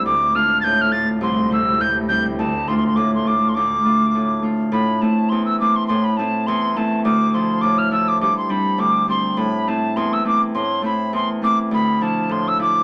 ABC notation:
X:1
M:4/4
L:1/16
Q:"Swing" 1/4=206
K:Ddor
V:1 name="Tin whistle"
d'4 f'3- f'/2 a'/2 g'2 f'2 a'2 z2 | c'4 e'4 g'2 z2 g'2 z2 | a4 (3c'2 c'2 c'2 d'2 c'2 d'3 c' | d'12 z4 |
b4 a4 c'2 e'2 d'2 c'2 | c'2 b2 a4 c'4 a4 | d'4 c'4 d'2 f'2 e'2 d'2 | d'2 c'2 b4 d'4 c'4 |
b4 a4 c'2 e'2 d'2 z2 | c'4 b4 c'2 z2 d'2 z2 | b4 a4 c'2 e'2 d'4 |]
V:2 name="Harp"
D,,4 [A,DF]4 A,,4 [A,DF]4 | C,,4 [G,CE]4 G,,4 [G,CE]4 | D,,4 [A,DF]4 A,,4 [A,DF]4 | D,,4 [A,DF]4 A,,4 [A,DF]4 |
A,,4 [A,CE]4 E,,4 [A,CE]4 | A,,4 [A,CE]4 E,,4 [A,CE]4 | D,,4 [F,DE]4 A,,4 [F,DE]4 | G,,4 [G,CD]4 D,,4 [G,CD]4 |
A,,4 [A,CE]4 E,,4 [A,CE]4 | A,,4 [A,CE]4 E,,4 [A,CE]4 | D,,4 [F,DE]4 A,,4 [F,DE]4 |]
V:3 name="String section" clef=bass
[D,,A,,]16- | [D,,A,,]16- | [D,,A,,]16- | [D,,A,,]16 |
z16 | z16 | z16 | z16 |
z16 | z16 | z16 |]